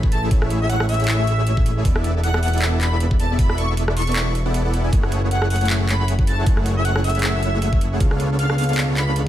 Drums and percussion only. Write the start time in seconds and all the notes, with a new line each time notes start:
0.03 kick
0.12 closed hi-hat
0.31 kick, closed hi-hat
0.42 cross-stick
0.50 closed hi-hat
0.70 closed hi-hat
0.80 cross-stick
0.89 open hi-hat
0.94 closed hi-hat
1.00 closed hi-hat
1.04 closed hi-hat
1.08 clap, closed hi-hat
1.27 closed hi-hat
1.47 closed hi-hat
1.57 kick
1.66 closed hi-hat
1.85 kick, closed hi-hat
1.96 cross-stick
2.04 closed hi-hat
2.24 closed hi-hat
2.34 cross-stick
2.43 open hi-hat
2.48 closed hi-hat
2.53 closed hi-hat
2.58 closed hi-hat
2.62 clap, closed hi-hat
2.81 clap, closed hi-hat
3.00 closed hi-hat
3.11 kick
3.20 closed hi-hat
3.39 kick, closed hi-hat
3.50 cross-stick
3.58 closed hi-hat
3.77 closed hi-hat
3.88 cross-stick
3.97 open hi-hat
4.02 closed hi-hat
4.07 closed hi-hat
4.12 closed hi-hat
4.16 clap, closed hi-hat
4.35 closed hi-hat
4.54 closed hi-hat
4.74 closed hi-hat
4.93 kick, closed hi-hat
5.03 cross-stick
5.12 closed hi-hat
5.31 closed hi-hat
5.42 cross-stick
5.50 open hi-hat
5.56 closed hi-hat
5.61 closed hi-hat
5.65 closed hi-hat
5.70 clap, closed hi-hat
5.89 clap, closed hi-hat
6.08 closed hi-hat
6.19 kick
6.27 closed hi-hat
6.46 kick, closed hi-hat
6.57 cross-stick
6.66 closed hi-hat
6.85 closed hi-hat
6.96 cross-stick
7.04 open hi-hat
7.10 closed hi-hat
7.15 closed hi-hat
7.19 closed hi-hat
7.23 clap, closed hi-hat
7.43 closed hi-hat
7.62 closed hi-hat
7.73 kick
7.81 closed hi-hat
8.00 kick, closed hi-hat
8.11 cross-stick
8.20 closed hi-hat
8.39 closed hi-hat
8.50 cross-stick
8.58 open hi-hat
8.64 closed hi-hat
8.69 closed hi-hat
8.73 closed hi-hat
8.78 clap, closed hi-hat
8.97 clap, closed hi-hat
9.16 closed hi-hat